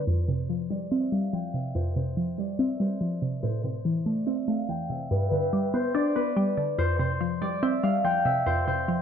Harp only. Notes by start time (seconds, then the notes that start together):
Already playing: B4 D5
0.07 C5
0.28 C5
0.70 D5
0.91 E5
1.12 F5
1.33 G5
1.54 E5
1.75 C5
1.96 C5
2.38 D5
2.59 E5
2.80 C5
3.43 C5
3.64 C5
4.06 D5
4.27 E5
4.48 F5
4.69 G5
4.90 E5
5.11 B4
5.32 B4
5.74 C5
5.95 D5
6.16 B4
6.79 C5
7.00 C5
7.42 D5
7.62 E5
7.83 F5
8.04 G5
8.26 E5
8.46 C5
8.68 C5